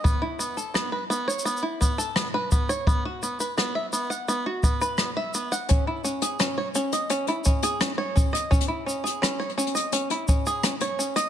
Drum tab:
HH |--------------------------------|--------------------------------|x-----x-x---x-x-x-x---x-x-----x-|-x----x-x-xxxxx-x-x-----x-x---x-|
SH |x---x-x-x---x-xxxx--x-x-x---x-x-|x---x-x-x---x-x-x---x-x-x---x-x-|x---x-x-x---x-x-x---x-x-x---x-x-|x---x-x-x---x-x-x---x-x-x---x-x-|
SD |--------r---------------r-------|--------r---------------r-------|--------r---------------r-------|--------r---------------r-------|
BD |o-------------------o-------o---|o-------------------o-----------|o-------------------o-------o---|o-------------------o-----------|